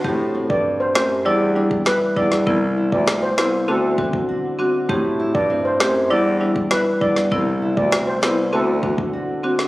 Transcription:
<<
  \new Staff \with { instrumentName = "Steel pan" } { \time 4/4 \key a \dorian \tempo 4 = 99 r8. d''16 r16 c''16 c''16 r16 d''8. r16 b'16 r16 d''16 r16 | r8. d''16 r16 c''16 c''16 r16 a'8. r4 r16 | r8. d''16 r16 c''16 c''16 r16 d''8. r16 b'16 r16 d''16 r16 | r8. d''16 r16 c''16 c''16 r16 a'8. r4 r16 | }
  \new Staff \with { instrumentName = "Marimba" } { \time 4/4 \key a \dorian <a c' g'>4 r8 <a c' g'>8 <g d' e'>8 <g d' e'>8 r8 <g d' e'>8 | <b c' e'>4 r8 <b c' e'>8 <c' d' fis'>8 <c' d' fis'>8 r8 <c' d' fis'>8 | <a c' g'>4 r8 <a c' g'>8 <g d' e'>8 <g d' e'>8 r8 <g d' e'>8 | <b c' e'>4 r8 <b c' e'>8 <c' d' fis'>8 <c' d' fis'>8 r8 <c' d' fis'>8 | }
  \new Staff \with { instrumentName = "Nylon-string guitar" } { \time 4/4 \key a \dorian a,8 c'4 g'8 e8 d'8 e'8 d'8 | c8 e'8 c'8 b'8 d8 c'8 fis'8 c'8 | a,8 e'8 c'8 c''8 e8 d'8 e'8 d'8 | c8 e'8 c'8 b'8 d8 c'8 fis'8 c'8 | }
  \new Staff \with { instrumentName = "Bass clarinet" } { \clef bass \time 4/4 \key a \dorian a,8. g,8. fis,8 e,4 r8 e,8 | c,8. d,8. c,8 d,4 r4 | a,8. g,8. fis,8 e,4 r8 e,8 | c,8. d,8. c,8 d,4 r4 | }
  \new DrumStaff \with { instrumentName = "Drums" } \drummode { \time 4/4 bd8. bd16 r8 <ss sn>8 r8. bd16 <ss sn>8 bd16 sn16 | bd8. bd16 <ss sn>8 <ss sn>8 r8 bd16 bd16 r4 | bd8. bd16 r8 <ss sn>8 r8. bd16 <ss sn>8 bd16 sn16 | bd8. bd16 <ss sn>8 <ss sn>8 r8 bd16 bd16 r8. sn16 | }
>>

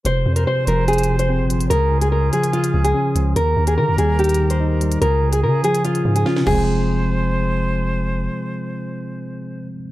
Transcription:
<<
  \new Staff \with { instrumentName = "Nylon-string guitar" } { \time 4/4 \key f \minor \tempo 4 = 145 c''8. bes'16 c''8 bes'8 aes'8. c''4~ c''16 | bes'8. aes'16 bes'8 aes'8 f'8. aes'4~ aes'16 | bes'8. aes'16 bes'8 aes'8 g'8. c''4~ c''16 | bes'8. aes'16 bes'8 aes'8 f'8. aes'16 f'8 aes'8~ |
aes'2. r4 | r1 | }
  \new Staff \with { instrumentName = "Woodwind section" } { \time 4/4 \key f \minor <f f' aes' c''>1 | <des des' aes'>1 | <ees' g' bes'>1 | <des' f' aes'>2.~ <des' f' aes'>8 <f f' aes' c''>8~ |
<f f' aes' c''>1~ | <f f' aes' c''>1 | }
  \new Staff \with { instrumentName = "Tine electric piano" } { \clef bass \time 4/4 \key f \minor c8 c8 c8 f8 c8 c8 c'8 f8 | des8 des8 des8 f8 des8 des8 des'8 f8 | ees8 ees8 ees8 g8 ees8 ees8 ees'8 g8 | des8 des8 des8 f8 des8 des8 des'8 <c f aes c'>8~ |
<c f aes c'>1~ | <c f aes c'>1 | }
  \new Staff \with { instrumentName = "808-style bass" } { \clef bass \time 4/4 \key f \minor f,,8 f,8 r8 f,,4.~ f,,16 g,,8. | des,4. r4 des,8 r8 des,8 | ees,8 ees,8 ees16 ees,16 ees,2~ ees,8 | des,4 des8 r4 aes,8 r8 f,,8~ |
f,,1 | r1 | }
  \new DrumStaff \with { instrumentName = "Drums" } \drummode { \time 4/4 hh8. hh16 r8 hh8 hh32 hh32 hh32 hh16. hh16 r8 hh16 hh16 | hh8. hh16 r8 hh16 hh16 hh16 hh8 hh16 r8 hh8 | hh8. hh16 r8 hh8 hh32 hh32 hh32 hh16. hh16 r8 hh16 hh16 | hh8. hh16 r8 hh16 hh16 hh16 hh8 hh16 sn16 sn16 <cymc bd>8 |
r4 r4 r4 r4 | r4 r4 r4 r4 | }
>>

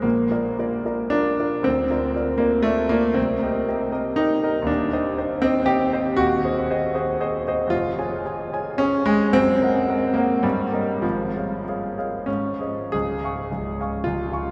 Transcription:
\new Staff \with { instrumentName = "Grand piano" } { \time 3/4 \key bes \major \tempo 4 = 114 << { <bes,, bes,>8 <f' bes' d''>8 <f' bes' d''>8 <f' bes' d''>8 <f' bes' d''>8 <f' bes' d''>8 | d,8 <f' bes' d''>8 <f' bes' d''>8 <f' bes' d''>8 <f' bes' d''>8 <f' bes' d''>8 | c,8 <g' bes' ees''>8 <g' bes' ees''>8 <g' bes' ees''>8 <g' bes' ees''>8 <g' bes' ees''>8 | <ees,, ees,>8 <g' c'' ees''>8 <g' c'' ees''>8 <g' c'' ees''>8 <c'' ees''>8 <g' c'' ees''>8 |
\key des \major <ees,, ees,>8 <aes' c'' ees''>8 <aes' c'' ees''>8 <aes' c'' ees''>8 <aes' c'' ees''>8 <aes' c'' ees''>8 | <f,, f,>8 <aes' des'' aes''>8 <aes' des'' aes''>8 <aes' des'' aes''>8 <aes' des'' aes''>8 <aes' des'' aes''>8 | <ges,, ges,>8 <bes' ees'' ges''>8 <bes' ees'' ges''>8 <bes' ees'' ges''>8 g,8 <bes' des'' ees''>8 | <aes,, aes,>8 <aes' des'' f''>8 <aes' des'' f''>8 <aes' des'' f''>8 aes,8 <aes' c'' ees''>8 |
<des,, des,>8 <f'' aes'' des'''>8 <des,, des,>8 <f'' aes'' des'''>8 <des,, des,>8 <f'' aes'' des'''>8 | } \\ { bes2 d'4 | c'4. bes8 a8 bes8 | c'2 ees'4 | d'4. c'8 g'4 |
ges'2. | f'2 des'8 aes8 | c'4. bes8 g4 | f2 des'4 |
aes'2 f'4 | } >> }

